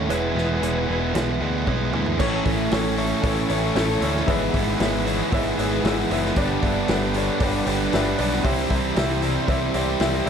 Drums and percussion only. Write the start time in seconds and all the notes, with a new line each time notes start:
0.10 closed hi-hat, cowbell
0.38 snare
0.63 closed hi-hat, cowbell
1.15 snare, closed hi-hat, cowbell
1.67 kick, high tom, cowbell
1.93 mid tom
2.06 floor tom
2.19 kick, crash, cowbell
2.45 kick, open hi-hat
2.71 snare, open hi-hat, cowbell
2.97 open hi-hat
3.23 kick, open hi-hat, cowbell
3.50 open hi-hat, cowbell
3.76 snare, open hi-hat, cowbell
4.02 open hi-hat, cowbell
4.16 snare
4.28 kick, open hi-hat, cowbell
4.54 kick, open hi-hat
4.80 snare, open hi-hat, cowbell
5.07 open hi-hat
5.33 kick, open hi-hat, cowbell
5.59 open hi-hat, cowbell
5.85 snare, open hi-hat, cowbell
6.11 open hi-hat, cowbell
6.25 snare
6.36 kick, open hi-hat, cowbell
6.63 kick, open hi-hat
6.88 snare, open hi-hat, cowbell
7.14 open hi-hat
7.40 kick, open hi-hat, cowbell
7.66 open hi-hat, cowbell
7.93 snare, open hi-hat, cowbell
8.18 open hi-hat, cowbell
8.33 snare
8.44 kick, open hi-hat, cowbell
8.59 snare
8.70 kick, open hi-hat
8.96 snare, open hi-hat, cowbell
9.22 open hi-hat
9.48 kick, open hi-hat, cowbell
9.74 open hi-hat, cowbell
10.00 snare, open hi-hat, cowbell